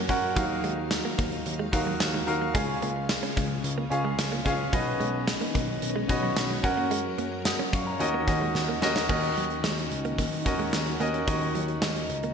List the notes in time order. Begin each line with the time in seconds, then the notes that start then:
Already playing: F#3 C#4 F#4 A#4 F#5
0.09 F#2 C#4 F#4 A#4 F#5, kick, closed hi-hat
0.36 D#2 D#3 F#3 D#4 F#4 A#4 F5, kick, closed hi-hat
0.64 D#2 G#3, closed hi-hat
0.78 muted clean electric guitar stroke
0.91 muted clean electric guitar stroke, snare, closed hi-hat, tambourine
1.05 A#3
1.18 D#2 A#3, kick, closed hi-hat
1.32 closed hi-hat
1.45 D#2, closed hi-hat
1.59 G#3
1.72 D#2 D#4 F#4 A#4 F5, muted clean electric guitar stroke, kick, closed hi-hat
1.87 F#3
2.00 D#2, snare, closed hi-hat, tambourine
2.14 G#3
2.27 D#2 D#4 F#4 A#4 F5, muted clean electric guitar stroke, closed hi-hat
2.42 A#3
2.54 C#2 C#3 G#3 C#4 F4 G#4 F5, kick, closed hi-hat
2.82 C#2 A#3, closed hi-hat
2.96 muted clean electric guitar stroke
3.09 muted clean electric guitar stroke, snare, closed hi-hat, tambourine
3.23 C#4, closed hi-hat
3.37 C#2 C#4, kick, closed hi-hat
3.64 C#2, closed hi-hat
3.78 A#3
3.90 C#2 C#4 F4 G#4 F5, muted clean electric guitar stroke, closed hi-hat
4.05 G#3
4.18 C#2, muted clean electric guitar stroke, snare, closed hi-hat, tambourine
4.32 A#3
4.45 C#2 C#4 F4 G#4 F5, kick, closed hi-hat
4.73 B1 B2 D#3 F#3 B3 C#4 F#4 B4 D#5, kick, closed hi-hat
5.00 B1 G#3, closed hi-hat
5.14 muted clean electric guitar stroke
5.28 muted clean electric guitar stroke, snare, closed hi-hat, tambourine
5.41 A#3, closed hi-hat
5.55 B1 A#3, kick, closed hi-hat
5.82 B1, closed hi-hat
5.96 G#3
6.09 B1 C#4 F#4 B4 D#5, muted clean electric guitar stroke, kick, closed hi-hat
6.23 F#3
6.36 B1, snare, closed hi-hat, tambourine
6.50 G#3
6.63 F#2 F#3 C#4 F#4 A#4 F#5, muted clean electric guitar stroke, kick, closed hi-hat
6.77 A#3
6.91 G#3, closed hi-hat
7.18 F#2 A#3, closed hi-hat
7.32 muted clean electric guitar stroke
7.45 F#5 D#6, muted clean electric guitar stroke, snare, closed hi-hat, tambourine
7.59 C#4
7.73 F#2 C#4 F5 C#6, kick, closed hi-hat
7.87 C#5 A#5
7.99 D#2 D#3 C#4 F#4 A#4 D#5, closed hi-hat
8.14 A#3
8.27 D#2 C#4 F#4 A#4 D#5, muted clean electric guitar stroke, kick, closed hi-hat
8.41 G#3
8.55 D#2, muted clean electric guitar stroke, snare
8.69 A#3
8.82 D#2 C#4 F#4 A#4 D#5, snare
8.96 snare
9.09 D#2 D#3 A#3 C#4 F#4 A#4 D#5, kick, crash
9.23 closed hi-hat
9.37 D#2 F#3, closed hi-hat
9.50 muted clean electric guitar stroke, closed hi-hat
9.64 D#2 G#3, snare
9.78 muted clean electric guitar stroke, closed hi-hat
9.91 C#2, closed hi-hat
10.05 A#3, closed hi-hat
10.18 A#3, kick, closed hi-hat
10.32 closed hi-hat
10.45 D#2 C#4 F#4 A#4 D#5, muted clean electric guitar stroke, kick, closed hi-hat
10.59 G#3, closed hi-hat
10.73 D#2, muted clean electric guitar stroke, snare
10.87 closed hi-hat
11.00 D#2 A#3 C#4 F#4 A#4 D#5, closed hi-hat
11.14 C#4, closed hi-hat
11.27 D#2 D#3 C#4 D#4 F#4 A#4 D#5, kick, closed hi-hat
11.41 muted clean electric guitar stroke, closed hi-hat
11.55 D#2 F#3, closed hi-hat
11.68 closed hi-hat
11.82 D#2 G#3, snare
11.96 closed hi-hat
12.09 C#2, muted clean electric guitar stroke, closed hi-hat
12.23 A#3, closed hi-hat